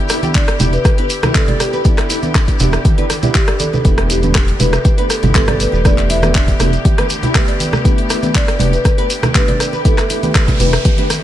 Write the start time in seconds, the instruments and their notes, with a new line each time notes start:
Already playing: string section D3 B3 E4 G4, synth stab B3 D4 E4 G4 D5
0.09 nylon-string guitar E4, cross-stick, open hi-hat, muted conga, shekere
0.23 synth stab B3 D4 E4 G4 D5, closed hi-hat, high conga, shekere
0.34 nylon-string guitar D4, marimba D5, kick, clap, closed hi-hat, shekere
0.48 cross-stick, closed hi-hat, shekere
0.60 analog synth bass E1, synth stab B3 D4 E4 G4 D5, nylon-string guitar E4, open hi-hat, muted conga, high conga, low conga, shekere
0.73 marimba B4, closed hi-hat, shekere
0.85 nylon-string guitar G4, kick, cross-stick, closed hi-hat, shekere
0.98 synth stab B3 D4 E4 G4 D5, nylon-string guitar B4, closed hi-hat
1.10 open hi-hat, shekere
1.23 nylon-string guitar E4, cross-stick, closed hi-hat, muted conga, high conga, low conga, shekere
1.35 synth stab B3 D4 E4 G4 D5, marimba A4, kick, clap, closed hi-hat, shekere
1.48 nylon-string guitar D5, closed hi-hat, muted conga, high conga, low conga
1.60 marimba G4, cross-stick, open hi-hat, shekere
1.73 nylon-string guitar B4, muted conga, shekere
1.84 synth stab B3 D4 E4 G4 D5, nylon-string guitar E4, kick, closed hi-hat, shekere
1.98 cross-stick, clap, closed hi-hat
2.10 nylon-string guitar E4, open hi-hat, muted conga, shekere
2.23 synth stab B3 D4 E4 G4 D5, closed hi-hat, high conga, shekere
2.35 nylon-string guitar D4, kick, cross-stick, clap, closed hi-hat, muted conga, shekere
2.48 kick, closed hi-hat, shekere
2.60 analog synth bass E1, synth stab B3 D4 E4 G4 D5, nylon-string guitar E4, open hi-hat, muted conga, high conga, low conga, shekere
2.72 cross-stick, closed hi-hat, shekere
2.85 nylon-string guitar G4, kick, closed hi-hat, muted conga, high conga, shekere
2.98 synth stab B3 D4 E4 G4 D5, nylon-string guitar B4, closed hi-hat
3.10 cross-stick, open hi-hat, high conga, shekere
3.22 synth stab B3 D4 E4 G4 D5, nylon-string guitar E4, closed hi-hat, muted conga, low conga, shekere
3.35 marimba G4, kick, clap, closed hi-hat, shekere
3.48 synth stab B3 D4 E4 G4 D5, nylon-string guitar D5, cross-stick, closed hi-hat, muted conga
3.60 synth stab B3 D4 E4 G4 D5, marimba A4, open hi-hat, high conga, shekere
3.73 nylon-string guitar B4, muted conga, low conga, shekere
3.85 analog synth bass E1, string section A3 G4, synth stab A3 B3 D4 G4 B4, nylon-string guitar E4, kick, closed hi-hat, shekere
3.98 cross-stick, closed hi-hat
4.10 nylon-string guitar E4, marimba G4, open hi-hat, muted conga, shekere
4.23 synth stab A3 B3 D4 G4 B4, closed hi-hat, high conga, shekere
4.35 nylon-string guitar D4, kick, cross-stick, clap, closed hi-hat, shekere
4.48 closed hi-hat, shekere
4.60 analog synth bass E1, synth stab A3 B3 D4 G4 B4, nylon-string guitar E4, marimba B4, open hi-hat, muted conga, high conga, low conga, shekere
4.73 cross-stick, closed hi-hat, shekere
4.85 nylon-string guitar G4, kick, closed hi-hat, shekere
4.98 synth stab A3 B3 D4 G4 B4, nylon-string guitar B4, closed hi-hat
5.10 marimba A4, cross-stick, open hi-hat, shekere
5.23 analog synth bass G1, nylon-string guitar E4, closed hi-hat, muted conga, high conga, low conga, shekere
5.35 synth stab A3 B3 D4 G4 B4, marimba A4, kick, clap, closed hi-hat, shekere
5.47 nylon-string guitar D5, cross-stick, closed hi-hat, muted conga, high conga, low conga
5.60 marimba B4, open hi-hat, shekere
5.72 analog synth bass E1, nylon-string guitar B4, muted conga, shekere
5.85 synth stab A3 B3 D4 G4 B4, nylon-string guitar E4, marimba D5, kick, cross-stick, closed hi-hat, shekere
5.98 clap, closed hi-hat
6.09 nylon-string guitar E4, marimba E5, open hi-hat, muted conga, shekere
6.22 synth stab A3 B3 D4 G4 B4, cross-stick, closed hi-hat, high conga, shekere
6.35 nylon-string guitar D4, kick, clap, closed hi-hat, muted conga, shekere
6.48 kick, closed hi-hat, shekere
6.60 analog synth bass E1, synth stab A3 B3 D4 G4 B4, nylon-string guitar E4, cross-stick, open hi-hat, muted conga, high conga, low conga, shekere
6.73 closed hi-hat, shekere
6.85 nylon-string guitar G4, kick, closed hi-hat, muted conga, high conga, shekere
6.98 synth stab A3 B3 D4 G4 B4, nylon-string guitar B4, cross-stick, closed hi-hat
7.10 open hi-hat, high conga, shekere
7.23 nylon-string guitar E4, closed hi-hat, muted conga, low conga, shekere
7.35 synth stab A3 B3 D4 G4 B4, kick, cross-stick, clap, closed hi-hat, shekere
7.48 nylon-string guitar D5, closed hi-hat, muted conga
7.60 open hi-hat, high conga, shekere
7.73 nylon-string guitar B4, cross-stick, muted conga, low conga, shekere
7.85 synth stab A3 B3 D4 G4 B4, nylon-string guitar E4, kick, closed hi-hat, shekere
7.98 closed hi-hat
8.10 nylon-string guitar E4, cross-stick, open hi-hat, muted conga, shekere
8.23 synth stab A3 B3 D4 G4 B4, closed hi-hat, high conga, shekere
8.35 nylon-string guitar D4, marimba D5, kick, clap, closed hi-hat, shekere
8.48 cross-stick, closed hi-hat, shekere
8.59 analog synth bass E1, synth stab A3 B3 D4 G4 B4, nylon-string guitar E4, open hi-hat, muted conga, high conga, low conga, shekere
8.73 marimba B4, closed hi-hat, shekere
8.85 nylon-string guitar G4, kick, cross-stick, closed hi-hat, muted conga, shekere
8.98 synth stab A3 B3 D4 G4 B4, nylon-string guitar B4, closed hi-hat
9.10 open hi-hat, shekere
9.22 nylon-string guitar E4, cross-stick, closed hi-hat, muted conga, high conga, low conga, shekere
9.35 synth stab A3 B3 D4 G4 B4, marimba B4, kick, clap, closed hi-hat, shekere
9.47 nylon-string guitar D5, closed hi-hat, muted conga, high conga, low conga
9.60 cross-stick, open hi-hat, shekere
9.73 nylon-string guitar B4, muted conga, shekere
9.85 synth stab A3 B3 D4 G4 B4, nylon-string guitar E4, marimba A4, kick, closed hi-hat, noise sweep, shekere
9.98 cross-stick, clap, closed hi-hat, shekere
10.10 nylon-string guitar E4, open hi-hat, muted conga, shekere
10.23 synth stab A3 B3 D4 G4 B4, closed hi-hat, high conga, shekere
10.35 nylon-string guitar D4, kick, cross-stick, clap, closed hi-hat, shekere
10.48 kick, closed hi-hat, low conga, shekere
10.60 analog synth bass E1, synth stab A3 B3 D4 G4 B4, nylon-string guitar E4, marimba B4, open hi-hat, muted conga, high conga, low conga, shekere
10.73 cross-stick, closed hi-hat, shekere
10.84 nylon-string guitar G4, kick, closed hi-hat, muted conga, high conga, shekere
10.98 synth stab A3 B3 D4 G4 B4, nylon-string guitar B4, closed hi-hat
11.10 cross-stick, open hi-hat, high conga, shekere